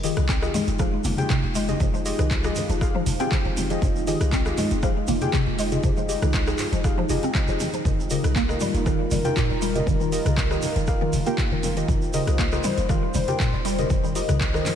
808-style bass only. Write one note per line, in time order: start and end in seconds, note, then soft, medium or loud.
0.00 0.10 F1 medium
0.17 0.48 C2 medium
0.67 0.98 F1 medium
1.04 1.14 F1 loud
1.43 1.74 F1 medium
1.80 2.12 F1 loud
2.19 2.50 C2 medium
2.69 3.00 F1 medium
3.06 3.15 F1 loud
3.45 3.76 F1 medium
3.82 4.14 F1 medium
4.21 4.51 C2 medium
4.71 5.02 F1 medium
5.08 5.17 F1 loud
5.47 5.77 F1 medium
5.84 6.15 F1 loud
6.22 6.53 C2 medium
6.72 7.03 F1 medium
7.09 7.19 F1 loud
7.48 7.56 F1 medium
7.85 8.17 F1 medium
8.24 8.55 C2 medium
8.74 9.05 F1 medium
9.11 9.20 F1 loud
9.50 9.81 F1 medium
9.87 10.19 F1 loud
10.25 10.56 C2 medium
10.76 11.07 F1 loud
11.13 11.22 F1 loud
11.51 11.82 F1 medium
11.88 12.20 F1 loud
12.27 12.58 C2 medium
12.78 13.08 F1 medium
13.14 13.24 F1 loud
13.53 13.84 F1 medium
13.90 14.22 F1 loud
14.29 14.60 C2 medium